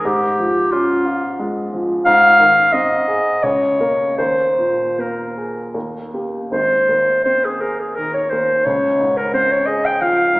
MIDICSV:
0, 0, Header, 1, 3, 480
1, 0, Start_track
1, 0, Key_signature, -4, "major"
1, 0, Tempo, 672646
1, 25, Time_signature, 3, 2, 24, 8
1, 1944, Tempo, 705882
1, 2424, Tempo, 764331
1, 4824, Tempo, 703400
1, 5784, Tempo, 675676
1, 7020, End_track
2, 0, Start_track
2, 0, Title_t, "Clarinet"
2, 0, Program_c, 0, 71
2, 38, Note_on_c, 0, 67, 77
2, 508, Note_on_c, 0, 65, 82
2, 519, Note_off_c, 0, 67, 0
2, 992, Note_off_c, 0, 65, 0
2, 1462, Note_on_c, 0, 77, 103
2, 1944, Note_on_c, 0, 75, 81
2, 1954, Note_off_c, 0, 77, 0
2, 2426, Note_on_c, 0, 73, 80
2, 2436, Note_off_c, 0, 75, 0
2, 2889, Note_off_c, 0, 73, 0
2, 2893, Note_on_c, 0, 72, 72
2, 3408, Note_on_c, 0, 70, 51
2, 3417, Note_off_c, 0, 72, 0
2, 3884, Note_off_c, 0, 70, 0
2, 4364, Note_on_c, 0, 72, 71
2, 4803, Note_off_c, 0, 72, 0
2, 4817, Note_on_c, 0, 72, 73
2, 4954, Note_on_c, 0, 68, 63
2, 4964, Note_off_c, 0, 72, 0
2, 5069, Note_on_c, 0, 70, 59
2, 5080, Note_off_c, 0, 68, 0
2, 5199, Note_on_c, 0, 68, 57
2, 5210, Note_off_c, 0, 70, 0
2, 5304, Note_on_c, 0, 70, 70
2, 5314, Note_off_c, 0, 68, 0
2, 5422, Note_off_c, 0, 70, 0
2, 5426, Note_on_c, 0, 73, 67
2, 5535, Note_on_c, 0, 72, 67
2, 5546, Note_off_c, 0, 73, 0
2, 5776, Note_on_c, 0, 73, 76
2, 5786, Note_off_c, 0, 72, 0
2, 6145, Note_on_c, 0, 70, 65
2, 6155, Note_off_c, 0, 73, 0
2, 6262, Note_off_c, 0, 70, 0
2, 6266, Note_on_c, 0, 72, 76
2, 6392, Note_on_c, 0, 73, 70
2, 6403, Note_off_c, 0, 72, 0
2, 6495, Note_on_c, 0, 75, 77
2, 6506, Note_off_c, 0, 73, 0
2, 6632, Note_on_c, 0, 79, 70
2, 6643, Note_off_c, 0, 75, 0
2, 6742, Note_on_c, 0, 77, 78
2, 6753, Note_off_c, 0, 79, 0
2, 7020, Note_off_c, 0, 77, 0
2, 7020, End_track
3, 0, Start_track
3, 0, Title_t, "Grand piano"
3, 0, Program_c, 1, 0
3, 0, Control_c, 1, 64, 127
3, 35, Note_on_c, 1, 44, 61
3, 36, Control_c, 1, 64, 0
3, 151, Control_c, 1, 64, 127
3, 281, Note_on_c, 1, 53, 44
3, 516, Note_on_c, 1, 61, 42
3, 659, Note_off_c, 1, 53, 0
3, 749, Note_on_c, 1, 65, 45
3, 899, Note_off_c, 1, 61, 0
3, 994, Note_on_c, 1, 56, 47
3, 1137, Note_off_c, 1, 65, 0
3, 1239, Note_on_c, 1, 53, 49
3, 1373, Note_off_c, 1, 56, 0
3, 1442, Note_off_c, 1, 44, 0
3, 1470, Note_off_c, 1, 53, 0
3, 1471, Note_on_c, 1, 44, 66
3, 1477, Control_c, 1, 64, 0
3, 1605, Control_c, 1, 64, 127
3, 1710, Note_on_c, 1, 51, 46
3, 1949, Note_on_c, 1, 60, 41
3, 2091, Note_off_c, 1, 51, 0
3, 2185, Note_on_c, 1, 68, 45
3, 2330, Note_off_c, 1, 60, 0
3, 2401, Note_off_c, 1, 44, 0
3, 2424, Note_on_c, 1, 37, 49
3, 2426, Note_off_c, 1, 68, 0
3, 2436, Control_c, 1, 64, 0
3, 2529, Control_c, 1, 64, 127
3, 2658, Note_on_c, 1, 58, 34
3, 2660, Note_on_c, 1, 70, 39
3, 2874, Note_off_c, 1, 58, 0
3, 2875, Note_off_c, 1, 70, 0
3, 2883, Note_off_c, 1, 37, 0
3, 2895, Note_on_c, 1, 39, 46
3, 2912, Control_c, 1, 64, 0
3, 3007, Control_c, 1, 64, 127
3, 3148, Note_on_c, 1, 46, 31
3, 3400, Note_on_c, 1, 58, 30
3, 3546, Note_off_c, 1, 46, 0
3, 3643, Note_on_c, 1, 68, 34
3, 3786, Note_off_c, 1, 58, 0
3, 3852, Note_off_c, 1, 39, 0
3, 3877, Note_on_c, 1, 39, 37
3, 3879, Note_off_c, 1, 68, 0
3, 3891, Control_c, 1, 64, 0
3, 4007, Control_c, 1, 64, 127
3, 4124, Note_on_c, 1, 58, 29
3, 4128, Note_on_c, 1, 67, 33
3, 4337, Note_off_c, 1, 58, 0
3, 4339, Note_off_c, 1, 67, 0
3, 4342, Note_off_c, 1, 39, 0
3, 4363, Note_on_c, 1, 32, 46
3, 4368, Control_c, 1, 64, 0
3, 4496, Control_c, 1, 64, 127
3, 4594, Note_on_c, 1, 39, 35
3, 4825, Note_on_c, 1, 60, 35
3, 4975, Note_off_c, 1, 39, 0
3, 5075, Note_on_c, 1, 68, 39
3, 5218, Note_off_c, 1, 60, 0
3, 5321, Note_on_c, 1, 51, 37
3, 5457, Note_off_c, 1, 68, 0
3, 5555, Note_on_c, 1, 39, 39
3, 5695, Note_off_c, 1, 51, 0
3, 5760, Note_off_c, 1, 32, 0
3, 5785, Note_on_c, 1, 37, 53
3, 5786, Note_off_c, 1, 39, 0
3, 5796, Control_c, 1, 64, 0
3, 5917, Control_c, 1, 64, 127
3, 6026, Note_on_c, 1, 44, 39
3, 6263, Note_on_c, 1, 60, 40
3, 6411, Note_off_c, 1, 44, 0
3, 6503, Note_on_c, 1, 68, 39
3, 6647, Note_off_c, 1, 60, 0
3, 6747, Note_on_c, 1, 53, 45
3, 6886, Note_off_c, 1, 68, 0
3, 6983, Note_on_c, 1, 44, 37
3, 7020, Note_off_c, 1, 37, 0
3, 7020, Note_off_c, 1, 44, 0
3, 7020, Note_off_c, 1, 53, 0
3, 7020, End_track
0, 0, End_of_file